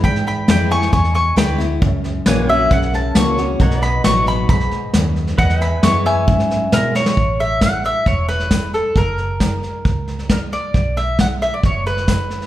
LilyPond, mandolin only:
\new Staff \with { instrumentName = "Mandolin" } { \time 4/4 \key a \major \tempo 4 = 135 << { <g'' b''>8 <g'' b''>8 <g'' b''>8 <gis'' cis'''>8 <gis'' cis'''>8 <gis'' cis'''>8 <g'' b''>8 r8 | r4. e''8 fis''8 a''8 cis'''4~ | cis'''8 b''8 cis'''8 b''8 b''4 r4 | fis''8 b''8 cis'''8 <e'' gis''>2 r8 |
r1 | r1 | r1 | } \\ { r1 | r1 | r1 | r2. bes'8 cis''8~ |
cis''8 e''8 fis''8 e''8 cis''8 b'4 a'8 | ais'2. ais'8 d''8~ | d''8 e''8 fis''8 e''16 d''16 cis''8 b'4. | } >> }